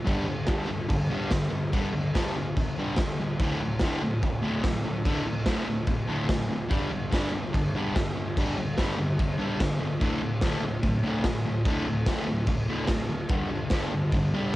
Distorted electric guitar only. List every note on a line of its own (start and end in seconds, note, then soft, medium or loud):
0.05 0.25 G2 loud
0.05 0.25 D3 loud
0.05 0.27 G3 loud
0.26 0.46 G2 medium
0.26 0.46 D3 medium
0.47 0.66 G2 medium
0.47 0.67 D3 medium
0.47 0.69 G3 loud
0.67 0.87 G2 medium
0.67 0.87 D3 medium
0.89 1.08 G2 medium
0.89 1.08 D3 medium
1.10 1.30 G2 medium
1.10 1.31 D3 medium
1.10 1.32 G3 medium
1.32 1.50 G2 medium
1.32 1.49 D3 medium
1.51 1.71 G2 medium
1.51 1.71 D3 medium
1.72 1.92 G2 medium
1.72 1.92 D3 medium
1.72 1.93 G3 loud
1.93 2.13 G2 medium
1.93 2.13 D3 medium
2.14 2.34 G2 medium
2.14 2.35 D3 medium
2.14 2.35 G3 medium
2.36 2.55 G2 medium
2.36 2.55 D3 medium
2.57 2.76 G2 medium
2.57 2.76 D3 medium
2.78 2.97 G2 medium
2.78 2.98 D3 loud
2.78 2.98 G3 loud
2.99 3.17 G2 medium
2.99 3.18 D3 medium
3.21 3.38 G2 medium
3.21 3.39 D3 medium
3.40 3.60 D2 loud
3.40 3.60 A2 loud
3.40 3.61 D3 loud
3.61 3.80 D2 medium
3.61 3.80 A2 medium
3.82 4.01 D2 medium
3.82 4.02 A2 medium
3.82 4.02 D3 medium
4.02 4.21 D2 medium
4.02 4.21 A2 loud
4.22 4.41 D2 medium
4.22 4.41 A2 medium
4.42 4.62 D2 medium
4.42 4.63 A2 loud
4.42 4.63 D3 loud
4.64 4.83 D2 medium
4.64 4.83 A2 medium
4.85 5.03 D2 medium
4.85 5.04 A2 medium
5.05 5.24 D2 medium
5.05 5.25 A2 loud
5.05 5.26 D3 loud
5.26 5.44 D2 medium
5.26 5.45 A2 medium
5.46 5.66 D2 medium
5.46 5.66 A2 loud
5.46 5.67 D3 loud
5.68 5.86 D2 medium
5.68 5.86 A2 medium
5.87 6.06 D2 medium
5.87 6.07 A2 loud
6.07 6.27 D2 medium
6.07 6.28 A2 loud
6.07 6.29 D3 medium
6.29 6.48 D2 medium
6.29 6.48 A2 medium
6.49 6.68 D2 medium
6.49 6.69 A2 medium
6.68 6.89 G2 medium
6.68 6.90 D3 medium
6.68 6.91 G3 loud
6.91 7.10 G2 medium
6.91 7.10 D3 medium
7.11 7.31 G2 loud
7.11 7.32 D3 medium
7.11 7.33 G3 loud
7.33 7.52 G2 medium
7.33 7.52 D3 medium
7.53 7.72 G2 medium
7.53 7.72 D3 medium
7.75 7.94 G2 medium
7.75 7.94 D3 medium
7.75 7.95 G3 medium
7.95 8.14 G2 medium
7.95 8.14 D3 medium
8.16 8.35 G2 medium
8.16 8.35 D3 medium
8.37 8.56 G2 medium
8.37 8.56 D3 loud
8.37 8.58 G3 loud
8.58 8.75 G2 medium
8.58 8.76 D3 medium
8.77 8.97 G2 medium
8.77 8.97 D3 loud
8.77 8.98 G3 loud
8.98 9.17 G2 medium
8.98 9.17 D3 medium
9.20 9.37 G2 medium
9.20 9.38 D3 medium
9.38 9.58 G2 medium
9.38 9.58 D3 medium
9.38 9.60 G3 loud
9.59 9.78 G2 medium
9.59 9.79 D3 medium
9.80 9.99 G2 medium
9.80 9.99 D3 medium
10.00 10.20 D2 loud
10.00 10.21 A2 loud
10.00 10.22 D3 medium
10.21 10.40 D2 medium
10.21 10.41 A2 medium
10.42 10.62 D2 medium
10.42 10.62 A2 loud
10.42 10.63 D3 loud
10.64 10.82 D2 medium
10.64 10.82 A2 medium
10.83 11.02 D2 medium
10.83 11.02 A2 medium
11.03 11.23 D2 loud
11.03 11.24 A2 medium
11.03 11.25 D3 loud
11.24 11.43 D2 medium
11.24 11.44 A2 medium
11.46 11.64 D2 medium
11.46 11.64 A2 medium
11.66 11.85 D2 medium
11.66 11.86 A2 loud
11.66 11.87 D3 loud
11.88 12.06 D2 medium
11.88 12.06 A2 medium
12.07 12.27 D2 loud
12.07 12.27 A2 loud
12.07 12.27 D3 medium
12.29 12.47 D2 medium
12.29 12.47 A2 medium
12.48 12.67 D2 medium
12.48 12.67 A2 medium
12.68 12.87 D2 loud
12.68 12.88 A2 medium
12.68 12.89 D3 loud
12.88 13.08 D2 medium
12.88 13.08 A2 medium
13.09 13.28 D2 medium
13.09 13.28 A2 medium
13.30 13.49 G2 medium
13.30 13.50 D3 loud
13.30 13.50 G3 loud
13.50 13.69 G2 medium
13.50 13.70 D3 medium
13.72 13.92 G2 loud
13.72 13.92 D3 medium
13.72 13.92 G3 loud
13.93 14.12 G2 medium
13.93 14.12 D3 medium
14.14 14.32 G2 medium
14.14 14.33 D3 loud
14.33 14.53 G2 medium
14.33 14.54 D3 medium
14.33 14.54 G3 loud